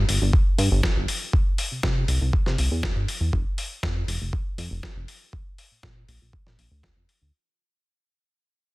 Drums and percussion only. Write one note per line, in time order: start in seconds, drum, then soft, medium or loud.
0.09 open hi-hat loud
0.33 kick loud
0.59 open hi-hat loud
0.83 kick loud
0.83 snare loud
1.08 open hi-hat medium
1.33 kick loud
1.58 open hi-hat loud
1.83 kick loud
1.83 snare loud
2.08 open hi-hat loud
2.33 kick loud
2.46 snare soft
2.58 open hi-hat loud
2.83 kick loud
2.83 snare loud
3.08 open hi-hat loud
3.33 kick loud
3.58 open hi-hat loud
3.83 kick loud
3.83 snare loud
4.08 open hi-hat loud
4.33 kick loud
4.58 open hi-hat loud
4.83 kick medium
4.83 snare loud
5.08 open hi-hat loud
5.33 kick loud
5.58 open hi-hat loud
5.83 kick loud
5.83 snare loud
6.09 open hi-hat loud
6.33 kick loud
6.47 snare soft
6.59 open hi-hat loud
6.83 kick medium
6.83 snare loud
7.09 open hi-hat loud